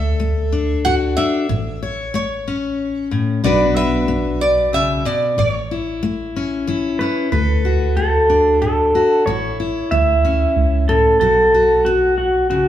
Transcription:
Already playing: D2 D3 A4 E5
0.20 A3
0.52 D4
0.85 A2 F#4 F#5
1.17 D4 E5
1.49 A1 A2
1.83 C#5
2.14 A3 C#5
2.48 C#4
3.11 A2
3.44 B1 B2 B3 D4 F#4 B4 D5
3.76 B4 E5
4.08 B3
4.41 D5
4.73 C#3 E5
5.05 B2 D5
5.38 A1 A2 C#5
5.71 E4
6.03 A3
6.36 C#4
6.67 E3 E4
6.99 C#4 B4
7.32 D2 D3 A4 B4
7.65 F#4
7.97 A3 A4
8.30 D4
8.62 A2 A4
8.95 F#4
9.26 A1 A2 E4 C#5
9.60 E4
9.91 D2 A3 E5
10.25 C#4
10.56 C#2
10.89 A2 A4
11.20 B1 B2 F#4 A4
11.54 F#4
11.85 B3 F#4
12.18 F#4
12.50 C#3 F#4

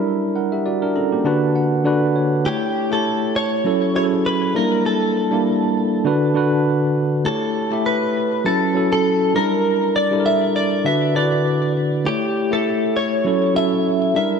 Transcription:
Already playing: G3 D4 E4 A#4
0.36 A#4 F#5
0.52 G4 E5
0.66 F#4 D5
0.82 D4 A#4
0.96 C#4 A4 A#5
1.12 A#3 G4
1.24 D3 D4 F#4 B4 A5
1.56 F#5
1.84 D3 D4 F#4 B4 D5
2.16 C#5
2.44 A3 E4 G4 C#5
2.91 A3 E4 G4 A4 C#5
3.36 C#5
3.64 F#3 C#4 E4 A4
3.94 F#3 C#4 E4 G#4 C#5
4.03 A4
4.26 B4
4.54 G3 A#3 D4 E4 A#4
4.86 A4
5.31 G3 A#3 D4 E4
6.04 D3 D4 F#4 B4
6.34 D3 D4 F#4 B4
7.24 A3 E4 G4 A4 C#5
7.71 A3 E4 G4 E5
7.86 B4
8.44 F#3 C#4 E4 A4
8.74 F#3 C#4 E4 A4
8.93 A4
9.34 G3 D4 E4 A#4
9.96 D5
10.11 G3 D4 E4 A4
10.20 A#4
10.26 E5
10.56 D5
10.84 D3 D4 F#4 B4 E5
11.14 D3 D4 E4 B4 D5
11.23 F#4
12.04 A3 E4 G4 C#5
12.51 A3 E4 G4 A4 E5
12.96 C#5
13.24 F#3 C#4 E4 A4
13.54 F#3 C#4 E4 A4 E5
14.14 G3 D4 E4 A#4 E5

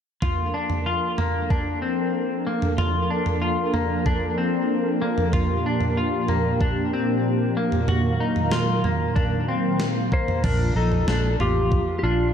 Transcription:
0.22 F3 A#3 D4 F4 A4 A#4, kick, floor tom
0.54 D4
0.70 floor tom
0.86 F4
1.18 A#3, floor tom
1.50 D4, kick, floor tom
1.82 C4
2.47 A#3
2.62 floor tom
2.78 F4, floor tom
3.10 D4
3.26 floor tom
3.42 F4
3.74 A#3, floor tom
4.06 D4, kick, floor tom
4.38 C4
5.02 A#3
5.18 floor tom
5.33 A#2 F4 G4, kick, floor tom
5.66 D4
5.81 floor tom
5.97 F4
6.28 A#3, floor tom
6.61 D4, kick, floor tom
6.93 C4
7.57 A#3
7.72 floor tom
7.88 D#3 F#3 F#4 A#4 F5, floor tom
8.20 D#4
8.36 floor tom
8.52 F4, snare
8.84 A#3, floor tom
9.16 D4, kick, floor tom
9.48 C4
9.80 snare
10.12 A#3 C5, kick
10.28 floor tom
10.43 A#1 F3 A#3 D4 F4 A#4, kick, floor tom, crash
10.75 A#1 D#4 A4
10.92 floor tom
11.07 A#1 D4, snare
11.40 A1 F4 G4, floor tom
11.72 kick, floor tom
11.99 G4
12.03 A#1 D4 F4

